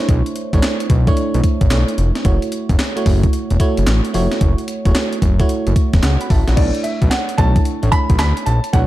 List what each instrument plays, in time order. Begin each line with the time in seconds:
Already playing: fm electric piano A3 D4 E4 C5 C#5
0.09 analog synth bass B1, kick, closed hi-hat
0.26 closed hi-hat
0.36 closed hi-hat
0.53 analog synth bass A1, fm electric piano A3 D4 E4 C#5, kick, closed hi-hat
0.63 snare, clap, closed hi-hat
0.80 closed hi-hat
0.90 analog synth bass B1, kick, closed hi-hat
1.07 fm electric piano A3 D4 E4 C#5, kick, closed hi-hat
1.17 closed hi-hat
1.34 analog synth bass B1, closed hi-hat
1.44 kick, closed hi-hat
1.61 analog synth bass A1, kick, closed hi-hat
1.71 analog synth bass B1, fm electric piano A3 D4 E4 C#5, snare, clap, closed hi-hat
1.88 closed hi-hat
1.98 analog synth bass F1, closed hi-hat
2.15 snare, closed hi-hat
2.25 analog synth bass F#1, fm electric piano A3 E4 F#4 C#5, kick, closed hi-hat
2.42 closed hi-hat
2.52 closed hi-hat
2.69 analog synth bass F#1, kick, closed hi-hat
2.79 snare, clap, closed hi-hat
2.96 fm electric piano A3 E4 F#4 C#5, closed hi-hat
3.06 analog synth bass F#1, kick, open hi-hat
3.23 kick, closed hi-hat
3.33 closed hi-hat
3.50 analog synth bass E1, closed hi-hat
3.60 fm electric piano A3 E4 F#4 C#5, kick, closed hi-hat
3.77 analog synth bass F#1, closed hi-hat
3.87 analog synth bass A1, snare, clap, closed hi-hat
4.05 closed hi-hat
4.14 analog synth bass F1, fm electric piano A3 E4 F#4 C#5, open hi-hat
4.32 snare, closed hi-hat
4.41 analog synth bass F#1, kick, closed hi-hat
4.58 closed hi-hat
4.68 closed hi-hat
4.85 analog synth bass E1, fm electric piano A3 E4 F#4 C#5, kick, closed hi-hat
4.95 snare, clap, closed hi-hat
5.13 closed hi-hat
5.22 analog synth bass F#1, kick, closed hi-hat
5.39 fm electric piano A3 E4 F#4 C#5, kick, closed hi-hat
5.49 closed hi-hat
5.67 analog synth bass F#1, closed hi-hat
5.76 kick, closed hi-hat
5.93 analog synth bass E1, kick, snare, closed hi-hat
6.03 analog synth bass C#2, fm electric piano C#5 F#5, snare, clap, closed hi-hat
6.21 fm electric piano F#5 B5, closed hi-hat
6.30 analog synth bass A1, fm electric piano E5 A5, kick, open hi-hat
6.48 analog synth bass A#1, fm electric piano C#5 F#5, snare, closed hi-hat
6.57 analog synth bass B1, fm electric piano A3 D4 E4 C#5, grand piano D5, kick, closed hi-hat, crash
6.75 closed hi-hat
6.83 grand piano E5, closed hi-hat
7.02 analog synth bass B1, kick, closed hi-hat
7.10 grand piano F#5, snare, clap, closed hi-hat
7.29 closed hi-hat
7.38 analog synth bass B1, fm electric piano A3 D4 E4 C#5, grand piano A5, kick, closed hi-hat
7.56 kick, closed hi-hat
7.65 closed hi-hat
7.82 analog synth bass A1, fm electric piano A3 D4 E4 C#5, closed hi-hat
7.92 grand piano B5, kick, closed hi-hat
8.10 analog synth bass B1, kick, closed hi-hat
8.19 analog synth bass D2, grand piano B5, snare, clap, closed hi-hat
8.37 closed hi-hat
8.46 analog synth bass A#1, grand piano A5, closed hi-hat
8.64 closed hi-hat
8.73 analog synth bass B1, fm electric piano A3 D4 E4 C#5, grand piano F#5, kick, closed hi-hat